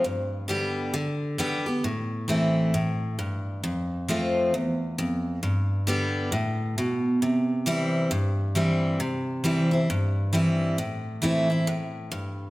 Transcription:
0.04 G2
0.48 D3 G3 B3 G4
0.94 D3
1.38 D3 G3 B3 G4
1.66 B3 G4
1.84 A2
2.28 E3 A3 C4 E4
2.74 A2
3.19 G2
3.63 F2
4.08 F3 A3 C4 F4
4.54 E2
4.98 F2
5.43 G2
5.87 D3 G3 B3 G4
6.32 A2
6.78 B2
7.22 C3
7.66 E3 G3 C4 E4
8.11 G2
8.55 E3 G3 C4 E4
9.00 C3
9.44 E3 G3 C4 E4
9.71 C4 E4
9.90 G2
10.33 E3 G3 C4 E4
10.78 A2
11.22 E3 A3 C4 E4
11.50 C4 E4
11.67 A2
12.12 G2

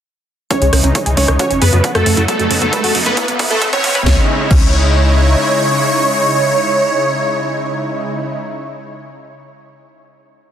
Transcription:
0.50 C#3 E3 G#3 C#4 D#4 C#5, kick, closed hi-hat, riser
0.62 C#2 G#3, closed hi-hat
0.73 C#2 C#3 E3 G#3 C#4 D#4, cross-stick, open hi-hat
0.84 C#2 C#3 E3 G#3 C#4 D#4, closed hi-hat
0.95 C#5, kick, closed hi-hat
1.06 C#2 C#3 E3 G#3 D#4 G#4, closed hi-hat
1.17 C#2 C#3 E3 G#3 C#4 D#4 C#5, kick, open hi-hat
1.28 C#2 C#5, cross-stick, closed hi-hat
1.39 C#4 F#4 C#5, kick, closed hi-hat
1.50 F#1 C#4, closed hi-hat
1.61 F#2 C#3 F#3 A3 B3 F#4 G#4 B4, open hi-hat
1.73 F#2 F#4, closed hi-hat
1.84 F#5, kick, closed hi-hat
1.95 F#2 C#3 F#3 A3 F#4 A4, cross-stick, closed hi-hat
2.06 F#2 C#3 F#3 A3 C#4 F#4, open hi-hat
2.17 F#2 E4, closed hi-hat
2.28 C#3 F#3 A3 B3 D#4 A4, kick, closed hi-hat
2.39 F#2 F#3, closed hi-hat
2.50 F#2 C#3 F#3 B3 C#4 D#4, open hi-hat
2.61 F#2 C#3 F#3 A3 B3 D#4 A4, closed hi-hat
2.73 B4, kick, closed hi-hat
2.84 F#2 C#3 F#3 B3 D#4 F#4, open hi-hat
2.95 F#2 C#3 F#3 B3 D#4, open hi-hat
3.06 F#2 A3 B3 B4, closed hi-hat
3.17 E4, kick, closed hi-hat
3.28 E1 B3, closed hi-hat
3.39 E2 C#3 G#3 B3 E4, kick, open hi-hat
3.50 E2 A3 E4 A4, closed hi-hat
3.62 E5, kick, closed hi-hat
3.73 E2 C#3 G#3 B3 C#4 E4 C#5, kick, closed hi-hat
3.84 E2 C#3 G#3 B3 E4, kick, open hi-hat
3.95 E2 B4, kick, closed hi-hat
4.06 C#2 C#3 G#3 C#4 D#4 E4 C#5, kick, snare
4.51 C#2 C#4 C#5, kick, crash

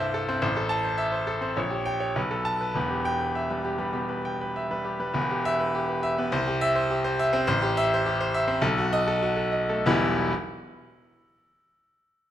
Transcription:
Already playing: C2 G2 C4 A4 E5 A5
0.00 C5
0.14 A4
0.28 C4 C5
0.42 A1 C5
0.57 A4
0.69 A5
0.85 C5
0.98 E5
1.12 C5
1.27 A4
1.41 C4 C5
1.57 A#1 C#5
1.71 G4
1.86 G5
2.00 C#5
2.16 B1 B4
2.31 A4
2.45 A5
2.61 B4
2.74 E1 E2 B4
2.90 G4
3.05 G5
3.21 B4
3.35 E5
3.50 G3 B4
3.64 G4
3.78 G3 B4
3.93 B2 G4
4.09 B4
4.25 G5
4.41 B4
4.56 E5
4.71 G3 B4
4.85 G4
5.00 G3 B4
5.14 E1 E2 B4
5.31 G4
5.45 E5
5.59 B4
5.75 G4
5.89 B4
6.03 E5
6.18 B3 B4
6.32 C2 C5
6.48 G4
6.61 E5
6.75 C5
6.91 G4
7.04 C5
7.19 E5
7.33 C4 C5
7.47 A1 C5
7.62 G4
7.77 E5
7.94 C5
8.06 G4
8.21 C5
8.34 E5
8.48 C4 C5
8.62 B1 A4
8.78 F#4
8.93 D#5
9.07 A4
9.22 F#4
9.37 A4
9.52 D#5
9.69 A3 A4
9.86 E1 B1 E3 G3 B3 E4

